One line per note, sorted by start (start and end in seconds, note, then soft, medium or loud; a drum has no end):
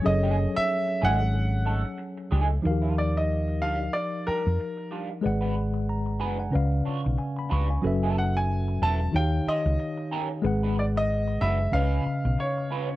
0.02 0.45 F#1 loud
0.02 2.59 F#3 medium
0.02 2.60 C#4 medium
0.02 2.60 G#4 medium
0.02 0.58 D#5 medium
0.02 muted clean electric guitar stroke soft
0.06 2.61 A4 medium
0.06 2.61 C#5 medium
0.23 0.36 A3 medium
0.23 0.36 D#4 medium
0.23 0.37 G#4 medium
0.37 muted clean electric guitar stroke soft
0.55 1.04 E5 loud
0.55 muted clean electric guitar stroke soft
0.55 muted fingered electric bass stroke soft
0.88 muted clean electric guitar stroke soft
1.01 1.82 G#1 medium
1.01 1.21 A3 medium
1.01 1.20 D#4 medium
1.01 1.19 G#4 medium
1.01 1.97 F#5 loud
1.21 muted clean electric guitar stroke soft
1.34 muted clean electric guitar stroke soft
1.65 1.81 A3 medium
1.65 1.82 D#4 medium
1.65 1.82 A4 medium
1.85 muted clean electric guitar stroke soft
1.98 muted clean electric guitar stroke soft
2.18 muted clean electric guitar stroke soft
2.31 2.58 C#2 medium
2.31 2.54 A3 medium
2.31 2.49 D#4 medium
2.31 2.48 G#4 medium
2.49 muted clean electric guitar stroke soft
2.62 3.63 D#2 loud
2.62 5.19 F3 medium
2.62 5.19 D#4 medium
2.62 2.72 F#4 soft
2.62 muted clean electric guitar stroke soft
2.66 5.21 A#4 medium
2.66 5.21 F5 medium
2.71 5.23 G4 medium
2.82 2.95 G3 soft
2.82 2.95 D4 medium
2.82 2.96 F4 medium
2.96 3.17 D5 medium
2.96 muted clean electric guitar stroke soft
3.15 3.64 D#5 medium
3.15 muted clean electric guitar stroke soft
3.48 muted clean electric guitar stroke soft
3.62 3.88 D2 medium
3.62 3.81 G3 medium
3.62 3.80 D4 medium
3.62 3.79 F4 medium
3.62 3.95 F5 medium
3.81 muted clean electric guitar stroke soft
3.93 4.27 D5 medium
3.93 muted clean electric guitar stroke soft
4.26 4.41 G3 medium
4.26 4.42 D4 medium
4.26 4.42 G4 medium
4.26 4.88 A#4 medium
4.26 muted fingered electric bass stroke soft
4.47 4.57 F2 medium
4.60 muted clean electric guitar stroke soft
4.77 muted clean electric guitar stroke soft
4.91 5.10 G3 medium
4.91 5.10 D4 medium
4.91 5.09 F4 medium
5.10 muted clean electric guitar stroke soft
5.21 6.50 G#3 medium
5.21 6.50 G#4 medium
5.21 6.51 B4 medium
5.21 6.51 D5 medium
5.21 muted clean electric guitar stroke soft
5.25 6.23 G#1 medium
5.25 5.89 F#5 medium
5.41 5.54 D4 medium
5.41 5.55 F#4 medium
5.41 5.56 B4 medium
5.56 muted clean electric guitar stroke soft
5.74 muted clean electric guitar stroke soft
5.89 6.20 A#5 medium
6.06 muted clean electric guitar stroke soft
6.20 6.48 F#1 medium
6.20 6.39 D4 medium
6.20 6.39 F#4 medium
6.20 6.38 B4 medium
6.20 6.39 G#5 medium
6.39 6.71 F#5 medium
6.39 muted clean electric guitar stroke soft
6.51 7.79 C#3 medium
6.51 7.80 C#4 medium
6.51 7.80 B4 medium
6.51 7.81 D5 medium
6.51 muted clean electric guitar stroke soft
6.55 6.80 C#2 loud
6.55 7.82 F5 medium
6.85 7.00 D4 medium
6.85 7.01 F4 medium
6.85 7.01 C#5 medium
6.85 muted fingered electric bass stroke soft
7.04 7.16 B1 medium
7.04 muted clean electric guitar stroke soft
7.18 7.36 G#5 medium
7.18 muted clean electric guitar stroke soft
7.36 7.51 B5 medium
7.36 muted clean electric guitar stroke soft
7.49 7.77 C#2 medium
7.49 7.69 D4 medium
7.49 7.69 F4 medium
7.49 7.68 B4 medium
7.49 7.70 C#6 medium
7.69 8.01 G#5 medium
7.69 muted clean electric guitar stroke soft
7.82 8.77 F#1 loud
7.82 9.10 F#3 medium
7.82 9.10 C#4 medium
7.82 9.10 F#4 medium
7.82 9.11 A4 medium
7.82 9.11 B4 medium
7.82 muted clean electric guitar stroke soft
7.87 9.12 E5 medium
8.03 8.16 B3 medium
8.03 8.17 E4 medium
8.03 8.17 A4 medium
8.17 8.36 F#5 medium
8.17 muted clean electric guitar stroke soft
8.37 8.83 G#5 medium
8.37 muted clean electric guitar stroke soft
8.68 muted clean electric guitar stroke soft
8.82 9.07 E1 medium
8.82 9.00 B3 medium
8.82 9.00 E4 medium
8.82 9.00 A4 medium
8.82 9.15 A5 medium
9.01 muted clean electric guitar stroke soft
9.12 9.39 D#2 medium
9.12 10.39 D#3 medium
9.12 10.40 D#4 medium
9.12 9.21 F#4 soft
9.12 10.41 C#5 medium
9.12 muted clean electric guitar stroke soft
9.16 10.42 F5 medium
9.16 9.48 G5 medium
9.20 10.43 G4 medium
9.47 9.61 C#4 medium
9.47 9.62 G4 medium
9.47 9.62 C5 medium
9.47 10.08 D#5 medium
9.47 muted fingered electric bass stroke soft
9.66 9.76 C#2 medium
9.66 muted clean electric guitar stroke soft
9.79 muted clean electric guitar stroke soft
9.97 muted clean electric guitar stroke soft
10.11 10.30 C#4 medium
10.11 10.29 G4 medium
10.11 10.29 A#4 medium
10.30 muted clean electric guitar stroke soft
10.42 11.36 G#1 loud
10.42 11.69 G#3 medium
10.42 11.70 G#4 medium
10.42 11.70 B4 medium
10.42 muted clean electric guitar stroke soft
10.46 11.71 F#5 medium
10.63 10.76 D4 medium
10.63 10.76 F#4 medium
10.63 10.76 B4 medium
10.77 10.84 D5 medium
10.77 muted clean electric guitar stroke soft
10.96 11.43 D#5 medium
10.96 muted clean electric guitar stroke soft
11.28 muted clean electric guitar stroke soft
11.41 11.66 F#1 medium
11.41 11.59 D4 medium
11.41 11.59 F#4 medium
11.41 11.59 B4 medium
11.41 11.70 E5 medium
11.60 muted clean electric guitar stroke soft
11.72 11.98 C#2 medium
11.72 12.96 C#3 medium
11.72 12.96 C#4 medium
11.72 12.03 C#4 medium
11.72 12.03 F4 medium
11.72 12.96 B4 medium
11.72 12.04 B4 medium
11.72 12.96 D#5 medium
11.72 12.65 F5 medium
11.76 11.82 E5 medium
11.82 12.96 F5 medium
12.06 muted clean electric guitar stroke soft
12.06 muted fingered electric bass stroke soft
12.25 12.35 B1 medium
12.25 muted clean electric guitar stroke soft
12.38 12.96 C#5 medium
12.38 muted clean electric guitar stroke soft
12.58 muted clean electric guitar stroke soft
12.71 12.88 C#4 medium
12.71 12.89 F4 medium
12.71 12.89 B4 medium
12.90 muted clean electric guitar stroke soft